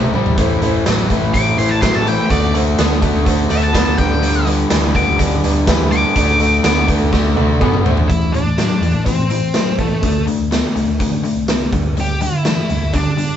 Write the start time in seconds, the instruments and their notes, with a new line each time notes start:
Already playing: fingered electric bass B1, overdriven electric guitar C3 A3
0.02 high tom
0.13 fingered electric bass A1, overdriven electric guitar C3 G3, upright piano E4 G4 C5, mid tom
0.26 floor tom
0.38 fingered electric bass A1, overdriven electric guitar A2 E3, upright piano E4 A4 C5, kick, closed hi-hat
0.62 overdriven electric guitar A2 E3, upright piano E4 A4 C5, closed hi-hat
0.86 fingered electric bass A1, overdriven electric guitar A2 F#3, upright piano E4 A4 B4, snare, closed hi-hat, tambourine
1.10 overdriven electric guitar A2 E3, upright piano E4 A4 B4, kick, closed hi-hat
1.22 fingered electric bass A1
1.34 overdriven electric guitar A2 E3, upright piano E4 A4 C5, lead electric guitar D6, kick, closed hi-hat
1.58 fingered electric bass A1, overdriven electric guitar A2 E3, upright piano E4 A4 C5, lead electric guitar C6, closed hi-hat
1.69 lead electric guitar A5
1.81 overdriven electric guitar A2 F#3, upright piano E4 A4 B4, lead electric guitar C6, kick, snare, closed hi-hat, tambourine
1.95 fingered electric bass A1, lead electric guitar A5
2.05 overdriven electric guitar A2 E3, upright piano E4 A4 C5, lead electric guitar G5, closed hi-hat
2.30 fingered electric bass D2, overdriven electric guitar D3 A3, upright piano F#4 A4 D5, lead electric guitar D5, kick, closed hi-hat
2.54 overdriven electric guitar D3 A3, upright piano F#4 A4 C5, closed hi-hat
2.78 fingered electric bass D2, overdriven electric guitar D3 B3, upright piano F#4 A4 D5, snare, closed hi-hat, tambourine
3.02 overdriven electric guitar D3 A3, upright piano F#4 A4 D5, kick, closed hi-hat
3.15 fingered electric bass D2
3.25 overdriven electric guitar D3 A3, upright piano F#4 A4 C5, kick, closed hi-hat
3.49 fingered electric bass D2, overdriven electric guitar D3 A3, upright piano F#4 A4 C5, lead electric guitar E5, closed hi-hat
3.63 lead electric guitar A5
3.72 overdriven electric guitar D3 B3, upright piano F#4 A4 D5, kick, snare, closed hi-hat, tambourine
3.87 fingered electric bass D2
3.96 fingered electric bass D2, overdriven electric guitar G2 D3, upright piano G4 B4 D5, lead electric guitar G5, kick, closed hi-hat
4.21 overdriven electric guitar G2 D3, closed hi-hat
4.46 overdriven electric guitar G2 D3, upright piano G4 B4 D5, closed hi-hat
4.69 fingered electric bass D2, overdriven electric guitar G2 E3, upright piano G4 B4 D5, snare, closed hi-hat, tambourine
4.94 overdriven electric guitar G2 D3, upright piano G4 B4 D5, lead electric guitar D6, kick, closed hi-hat
5.08 fingered electric bass D2
5.18 overdriven electric guitar G2 D3, upright piano G4 B4 D5, kick, closed hi-hat
5.43 fingered electric bass D2, overdriven electric guitar G2 D3, upright piano G4 B4 D5, closed hi-hat
5.67 overdriven electric guitar G2 E3, upright piano G4 B4 E5, kick, snare, closed hi-hat, tambourine
5.80 fingered electric bass D2
5.91 overdriven electric guitar G2 D3, upright piano B4 D5, lead electric guitar D6, closed hi-hat
6.16 fingered electric bass D2, overdriven electric guitar D3 A3, upright piano F#4 A4 D5, kick, closed hi-hat
6.40 overdriven electric guitar D3 A3, upright piano F#4 A4 D5, closed hi-hat
6.63 fingered electric bass D2, overdriven electric guitar D3 B3, upright piano F#4 A4 D5, lead electric guitar D6, snare, closed hi-hat, tambourine
6.87 overdriven electric guitar D3 A3, upright piano F#4 A4 B4, kick, closed hi-hat
7.02 fingered electric bass D2
7.12 overdriven electric guitar D3 A3, upright piano F#4 A4 D5, kick, snare
7.35 fingered electric bass D2, overdriven electric guitar D3 A3, upright piano F#4 A4 D5, high tom
7.59 fingered electric bass F#1, overdriven electric guitar D3 B3, upright piano F#4 A4 D5, kick, mid tom
7.73 mid tom
7.83 fingered electric bass A1, overdriven electric guitar D3 A3, upright piano F#4 A4 C5, floor tom
7.97 floor tom
8.08 fingered electric bass A1, overdriven electric guitar A2 E3, lead electric guitar E4, kick, closed hi-hat
8.32 overdriven electric guitar A2 E3, lead electric guitar D4, closed hi-hat
8.46 fingered electric bass A2
8.58 overdriven electric guitar A2 F#3, snare, closed hi-hat, tambourine
8.81 fingered electric bass E2, overdriven electric guitar A2 E3, closed hi-hat
8.94 fingered electric bass A1
9.05 overdriven electric guitar A2 E3, lead electric guitar C4, kick, closed hi-hat
9.18 fingered electric bass A2
9.30 overdriven electric guitar A2 E3, closed hi-hat
9.54 overdriven electric guitar A2 F#3, snare, closed hi-hat, tambourine
9.79 fingered electric bass C2, overdriven electric guitar A2 E3, lead electric guitar A3, kick, closed hi-hat
10.02 fingered electric bass D2, overdriven electric guitar D3 A3, kick, closed hi-hat
10.27 overdriven electric guitar D3 A3, closed hi-hat
10.39 fingered electric bass D2
10.51 overdriven electric guitar D3 B3, snare, closed hi-hat, tambourine
10.75 fingered electric bass C2, overdriven electric guitar D3 A3, closed hi-hat
10.87 fingered electric bass D2
10.99 overdriven electric guitar D3 A3, kick, closed hi-hat
11.11 fingered electric bass D3
11.23 overdriven electric guitar D3 A3, closed hi-hat
11.35 fingered electric bass C2
11.48 overdriven electric guitar D3 B3, snare, closed hi-hat, tambourine
11.73 fingered electric bass D2, overdriven electric guitar G2 D3, kick, closed hi-hat
11.97 overdriven electric guitar G2 D3, lead electric guitar G4, closed hi-hat
12.21 overdriven electric guitar G2 D3, lead electric guitar E4, closed hi-hat
12.32 fingered electric bass D3
12.45 overdriven electric guitar G2 E3, snare, closed hi-hat, tambourine
12.69 fingered electric bass D2, overdriven electric guitar G2 D3, closed hi-hat
12.83 fingered electric bass D2
12.93 overdriven electric guitar G2 D3, lead electric guitar D4, kick, closed hi-hat
13.06 fingered electric bass D3
13.17 overdriven electric guitar G2 D3, closed hi-hat